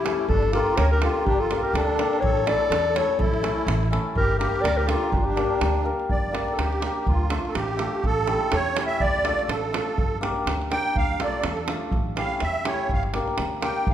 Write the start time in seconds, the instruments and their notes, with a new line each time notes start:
Already playing: accordion E4, clarinet G4
0.04 hammered dulcimer A3 C#4 E4 A4, davul high
0.28 upright bass G1, accordion D4, clarinet A4, davul low
0.42 davul high
0.52 hammered dulcimer A#3 D4 G4 A#4, accordion F4, clarinet A4, davul high
0.67 davul high
0.77 upright bass D2, accordion A#4, clarinet C#5, davul high
0.91 accordion G4, clarinet A#4, davul high
1.02 hammered dulcimer A#3 D4 G4 A#4, accordion F4, clarinet A4, davul high
1.26 upright bass G1, accordion D4, clarinet G4, davul low
1.38 accordion F4, clarinet A4
1.50 hammered dulcimer A#3 D4 G4 A#4, davul high
1.63 accordion G4, clarinet A#4, davul high
1.73 upright bass D2, accordion D4, clarinet A4, davul high
1.97 hammered dulcimer A#3 D4 G4 A#4, davul high
2.13 davul high
2.20 upright bass A1, clarinet C#5, davul low
2.24 accordion A4
2.37 davul high
2.46 hammered dulcimer A3 C#4 E4 A4, accordion A4, clarinet D5, davul high
2.61 davul high
2.70 upright bass E2, davul high
2.85 davul high
2.94 hammered dulcimer A3 C#4 E4 A4, clarinet C#5, davul high
2.98 accordion A4
3.19 upright bass A1, accordion E4, clarinet A4, davul low
3.34 davul high
3.42 hammered dulcimer A3 C#4 E4 A4, davul high
3.58 davul high
3.67 upright bass A1, davul high
3.83 davul high
3.90 hammered dulcimer A3 C#4 E4 A4, davul high
4.15 upright bass G1, accordion G4, clarinet A#4, davul low
4.31 davul high
4.38 hammered dulcimer A#3 D4 G4 A#4, accordion G4, clarinet A#4, davul high
4.56 davul high
4.61 upright bass D2, accordion A#4, clarinet D5, davul high
4.76 accordion G4, clarinet A#4, davul high
4.86 hammered dulcimer A#3 D4, accordion F4, clarinet A4, davul high
4.90 hammered dulcimer G4 A#4
5.11 upright bass G1, accordion D4, clarinet G4, davul low
5.17 accordion D4, clarinet F4
5.25 accordion D4, clarinet G4
5.36 hammered dulcimer A#3 D4 G4 A#4, davul high
5.61 upright bass D2, davul high
5.75 davul high
5.84 hammered dulcimer A#3 D4 G4 A#4
5.99 davul high
6.09 upright bass G1, accordion D5, davul low
6.32 hammered dulcimer A#3 D4 G4 A#4, davul high
6.48 accordion A4, davul high
6.58 upright bass D2, accordion G4, davul high
6.73 davul high
6.81 hammered dulcimer A#3 D4 G4 A#4, davul high
7.00 accordion G4
7.07 upright bass D2, accordion F4, davul low
7.29 hammered dulcimer A3 D4 F4 A4, davul high
7.45 accordion A4, davul high
7.55 upright bass A1, accordion G4, davul high
7.68 davul high
7.77 hammered dulcimer A3 D4 F4 A4, davul high
8.04 upright bass A1, accordion A4, davul low
8.26 hammered dulcimer A3 C#4 E4 G4, davul high
8.41 davul high
8.52 upright bass E2, accordion C#5, davul high
8.66 davul high
8.75 hammered dulcimer A3 C#4 E4 G4, davul high
8.87 accordion E5
9.00 upright bass D2, accordion D5, davul low
9.15 davul high
9.25 hammered dulcimer A3 D4 F4 A4, davul high
9.39 davul high
9.48 upright bass A1, accordion A4, davul high
9.72 hammered dulcimer A3 D4 F4 A4, davul high
9.98 upright bass G1, davul low
10.21 hammered dulcimer A#3 D4 G4 A#4, davul high
10.36 davul high
10.46 upright bass D2, davul high
10.62 davul high
10.70 hammered dulcimer A#3 D4 G4 A#4, accordion G5, davul high
10.95 upright bass D2, accordion F5, davul low
11.20 hammered dulcimer A3 D4 F4 A4, accordion D5, davul high
11.33 davul high
11.44 upright bass E2, davul high
11.48 accordion A4
11.57 davul high
11.68 hammered dulcimer A3 D4 F4 A4, davul high
11.91 upright bass A1, davul low
12.16 hammered dulcimer A3 C#4 E4 G4, accordion F5, davul high
12.30 davul high
12.40 upright bass E2, accordion E5, davul high
12.54 davul high
12.64 hammered dulcimer A3 C#4 E4 G4, accordion C#5, davul high
12.89 upright bass G1, accordion F5, davul low
13.03 davul high
13.14 hammered dulcimer A#3 D4 G4 A#4, davul high
13.28 davul high
13.38 upright bass D2, davul high
13.61 hammered dulcimer A#3 D4 G4 A#4, accordion G5, davul high
13.76 davul high
13.87 upright bass G1, accordion F5, davul low